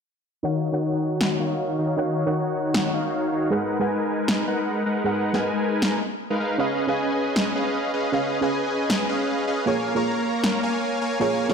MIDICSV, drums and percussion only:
0, 0, Header, 1, 2, 480
1, 0, Start_track
1, 0, Tempo, 384615
1, 547, Time_signature, 4, 2, 24, 8
1, 14398, End_track
2, 0, Start_track
2, 0, Title_t, "Drums"
2, 1506, Note_on_c, 9, 38, 108
2, 1631, Note_off_c, 9, 38, 0
2, 3425, Note_on_c, 9, 38, 117
2, 3550, Note_off_c, 9, 38, 0
2, 5344, Note_on_c, 9, 38, 120
2, 5469, Note_off_c, 9, 38, 0
2, 6666, Note_on_c, 9, 38, 34
2, 6791, Note_off_c, 9, 38, 0
2, 7265, Note_on_c, 9, 38, 116
2, 7390, Note_off_c, 9, 38, 0
2, 9186, Note_on_c, 9, 38, 111
2, 9311, Note_off_c, 9, 38, 0
2, 11105, Note_on_c, 9, 38, 108
2, 11230, Note_off_c, 9, 38, 0
2, 13024, Note_on_c, 9, 38, 108
2, 13149, Note_off_c, 9, 38, 0
2, 14346, Note_on_c, 9, 38, 33
2, 14398, Note_off_c, 9, 38, 0
2, 14398, End_track
0, 0, End_of_file